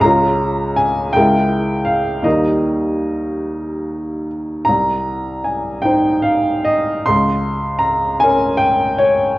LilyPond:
\new Staff \with { instrumentName = "Upright piano" } { \time 12/8 \key bes \dorian \tempo 4. = 51 << { bes''4 aes''8 g''4 f''8 ees''2~ ees''8 r8 | bes''4 aes''8 g''8 f''8 ees''8 c'''4 bes''8 aes''8 g''8 des''8 | } \\ { <des, aes des' f'>4. <des, aes fes' bes'>4. <ees, g ees' bes'>2. | c,4. <ees' c''>4. des,4. <des' bes'>4. | } >> }